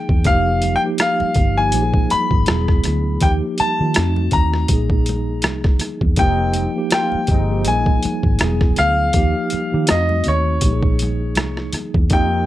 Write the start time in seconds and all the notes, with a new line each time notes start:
Already playing: F3 A#3 D#4 G#4 G5
0.09 E2, kick
0.24 F1 F3 A#3 D#4 G4 F5, kick, closed hi-hat
0.62 closed hi-hat, muted conga, high conga
0.76 G5
0.84 F3 A#3 D#4 G4
0.98 F5, cross-stick, closed hi-hat
1.20 muted fingered electric bass stroke, high conga
1.34 G1, kick, closed hi-hat, muted conga, low conga
1.58 F3 A#3 D#4 G4 G#5
1.72 A#1 F3 A#3 D#4 G4, closed hi-hat, high conga
1.82 G#4
1.94 kick
2.10 B5, muted fingered electric bass stroke, closed hi-hat, high conga
2.31 G#1, kick
2.46 E1 F#3 B3 E4 G#4, cross-stick, closed hi-hat, high conga
2.68 kick, cross-stick
2.84 D2, cross-stick, closed hi-hat, muted conga, high conga, low conga
3.21 D#2 F3 A#3 D#4 G5, kick, closed hi-hat, muted conga, low conga
3.25 G4
3.58 A5, muted fingered electric bass stroke, closed hi-hat, muted conga, high conga
3.80 D#3 F3 A#3 D#4 F4
3.94 F2 A3 C4 D#4 F#4, cross-stick, closed hi-hat, muted conga
4.16 high conga
4.31 D#2 A#5, kick, closed hi-hat, muted conga, low conga
4.54 cross-stick
4.68 A#1 F3 A#3 D#4, kick, closed hi-hat, muted conga, high conga
4.73 G#4
4.90 kick
5.06 closed hi-hat, muted conga, high conga
5.42 C2, cross-stick, closed hi-hat, high conga
5.64 kick, cross-stick
5.79 cross-stick, closed hi-hat, muted conga, high conga, low conga
6.01 E2, kick
6.16 F1 F3 A#3 C4 D#4 G4 G5, kick, closed hi-hat
6.54 closed hi-hat, muted conga, high conga
6.76 F3 A#3 D#4 G4
6.91 A#3 C4 F4 G5, cross-stick, closed hi-hat, muted conga
7.12 muted fingered electric bass stroke, high conga
7.27 G1 G#3 C4 D#4, kick, closed hi-hat, low conga
7.50 F3 A#3 D#4 G4
7.65 F3 A#3 D#4 G#5, closed hi-hat, muted conga, high conga
7.69 A#1 G#4
7.86 kick
8.03 muted fingered electric bass stroke, closed hi-hat, muted conga, high conga
8.23 G#1, kick
8.39 E1 F#3 B3 E4 G#4, cross-stick, closed hi-hat, muted conga, high conga
8.61 kick, cross-stick
8.76 D2 F5, cross-stick, closed hi-hat, muted conga, high conga, low conga
9.13 D#2 F3 A#3 D#4 G4, kick, closed hi-hat
9.50 muted fingered electric bass stroke, closed hi-hat, muted conga, high conga
9.72 D#3 F3 A#3 D#4 G4
9.87 F2 A3 C4 D#4 D#5, cross-stick, closed hi-hat
9.91 F#4
10.09 high conga
10.24 D#2, closed hi-hat, low conga
10.28 C#5
10.61 A#1 F3 A#3, kick, closed hi-hat, high conga
10.65 D#4 G4
10.73 G#4
10.83 kick
10.99 closed hi-hat, high conga
11.35 C2, cross-stick, closed hi-hat, muted conga, high conga
11.57 cross-stick
11.73 cross-stick, closed hi-hat, muted conga, high conga, low conga
11.94 E2, kick
12.10 F2 F3 A#3 C4 D#4 G5, kick, closed hi-hat
12.14 G4